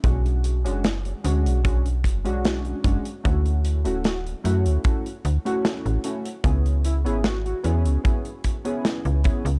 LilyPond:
<<
  \new Staff \with { instrumentName = "Soft synth lead" } { \time 4/4 \key b \dorian \tempo 4 = 75 r1 | r8. fis'16 fis'16 r2 r8. | r8 e'16 e'16 fis'16 fis'16 r2 r8 | }
  \new Staff \with { instrumentName = "Synth keys" } { \time 4/4 \key b \dorian <gis cis' d' fis'>8. <gis cis' d' fis'>16 r8 <gis cis' d' fis'>8 <gis cis' d' fis'>16 r8 <gis cis' d' fis'>8. <gis cis' d' fis'>16 r16 | <a cis' e' fis'>8. <a cis' e' fis'>16 r8 <a cis' e' fis'>8 <a cis' e' fis'>16 r8 <a cis' e' fis'>8. <a cis' e' fis'>16 r16 | <b cis' e' gis'>8. <b cis' e' gis'>16 r8 <b cis' e' gis'>8 <b cis' e' gis'>16 r8 <b cis' e' gis'>8. <b cis' e' gis'>16 r16 | }
  \new Staff \with { instrumentName = "FM bass" } { \clef bass \time 4/4 \key b \dorian b,,8. fis,,8 r16 d,16 b,,8. fis,,16 b,,8 r16 fis,,16 r16 | d,8. d,,8 r16 fis,16 d,16 r8 d,16 r8 a,,16 r8 | cis,8. gis,,8 r16 e,16 cis,16 r4 r16 cis,16 r16 cis,16 | }
  \new DrumStaff \with { instrumentName = "Drums" } \drummode { \time 4/4 <hh bd>16 hh16 hh16 hh16 <hh sn>16 hh16 hh16 hh16 <hh bd>16 hh16 <hh bd>16 hh16 <hh sn>16 hh16 <hh bd>16 hh16 | <hh bd>16 hh16 hh16 hh16 <hh sn>16 hh16 hh16 hh16 <hh bd>16 hh16 hh16 hh16 <hh sn>16 hh16 hh16 hh16 | <hh bd>16 hh16 hh16 hh16 <hh sn>16 hh16 hh16 hh16 <hh bd>16 hh16 <hh bd>16 hh16 <hh sn>16 hh16 <hh bd>16 hh16 | }
>>